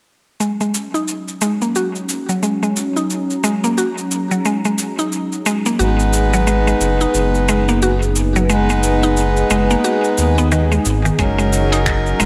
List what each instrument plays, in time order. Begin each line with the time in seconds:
0.40 analog synth pad F#3, synth pluck G#3, shaker
0.48 analog synth pad C#4
0.61 synth pluck G#3, shaker
0.74 shaker
0.94 synth pluck D#4, shaker
1.08 shaker
1.18 analog synth pad D#4
1.28 shaker
1.41 synth pluck G#3, shaker
1.62 synth pluck A#3, shaker
1.68 analog synth pad G#4
1.75 synth pluck F#4, shaker
1.95 shaker
2.09 shaker
2.29 synth pluck F#3, shaker
2.39 synth pluck G#3, analog synth pad A#5, shaker
2.63 synth pluck G#3, shaker
2.76 shaker
2.96 synth pluck D#4, shaker
3.10 shaker
3.30 shaker
3.44 synth pluck G#3, shaker
3.64 synth pluck A#3, shaker
3.78 synth pluck F#4, shaker
3.98 shaker
4.11 shaker
4.31 synth pluck F#3, shaker
4.45 synth pluck G#3, shaker
4.65 synth pluck G#3, shaker
4.78 shaker
4.99 synth pluck D#4, shaker
5.12 shaker
5.32 shaker
5.46 synth pluck G#3, shaker
5.66 synth pluck A#3, shaker
5.77 analog synth bass G#1, harmonium G#3 B3 D#4 B4, analog synth pad B3, synth pluck F#4, shaker
5.99 shaker
6.13 shaker
6.33 synth pluck F#3, shaker
6.47 synth pluck G#3, shaker
6.67 synth pluck G#3, shaker
6.81 analog synth bass F#1, shaker
7.01 synth pluck D#4, shaker
7.14 analog synth bass F#1, shaker
7.34 shaker
7.48 synth pluck G#3, shaker
7.68 synth pluck A#3, shaker
7.81 harmonium G#3 B3 D#4 B4, synth pluck F#4, shaker
8.02 shaker
8.16 shaker
8.36 synth pluck F#3, shaker
8.47 harmonium G#3 B3 D#4 B4, synth pluck G#3, shaker
8.69 synth pluck G#3, shaker
8.83 shaker
9.03 synth pluck D#4, shaker
9.17 shaker
9.36 shaker
9.50 analog synth bass F#1, synth pluck G#3, shaker
9.70 synth pluck A#3, shaker
9.84 synth pluck F#4, shaker
10.04 shaker
10.18 analog synth bass D#2, shaker
10.38 synth pluck B3, shaker
10.50 synth pluck D#3, harmonium G#3 B3 D#4 B4, shaker
10.72 synth pluck G#3, shaker
10.85 analog synth bass G#1, shaker
11.05 synth pluck D#3, shaker
11.17 analog synth bass F#1, harmonium F#3 C#4 D#4 A#4, analog synth pad F#3, synth pluck G#3, kick, closed hi-hat, shaker
11.38 synth pluck G#3, shaker
11.52 analog synth pad C#4, shaker
11.72 synth pluck D#4, closed hi-hat, shaker
11.86 finger snap, kick, closed hi-hat, shaker
12.06 shaker
12.20 analog synth bass D#1, synth pluck G#3, shaker